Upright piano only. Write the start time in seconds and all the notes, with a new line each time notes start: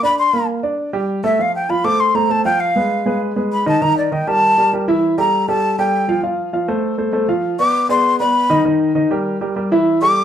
0.03 D4 D5
0.33 A#3 A#4
0.63 D4 D5
0.93 G3 G4
1.24 A3 A4
1.39 F3 F4 F5
1.69 F3 F4 F5
1.84 A3 A4 C5
2.15 A3 A4 C5
2.29 A3 A4 C5
2.45 F3 F4 F5
2.76 G#3 G#4 B4
3.06 G#3 G#4 B4
3.36 G#3 G#4 B4
3.66 D#3 D#4 D#5
3.81 D#3 D#4 D#5
4.11 D#3 D#4 D#5
4.27 G3 G4 A#4
4.58 G3 G4 A#4
4.73 G3 G4 A#4
4.88 E3 E4 E5
5.18 G3 G4 A4
5.48 G3 G4 A4
5.79 G3 G4 A4
6.08 F3 F4 F5
6.23 F3 F4 F5
6.53 F3 F4 F5
6.68 A3 A4 C5
6.98 A3 A4 C5
7.13 A3 A4 C5
7.28 F3 F4 F5
7.59 B3 B4 D5
7.89 B3 G#4 D5
8.20 B3 B4 D5
8.50 D#3 D#4 D#5
8.65 D#3 D#4 D#5
8.95 D#3 D#4 D#5
9.11 G3 G4 A#4
9.41 G3 G4 A#4
9.56 G3 G4 A#4
9.72 E3 E4 E5
10.02 G3 G4 A4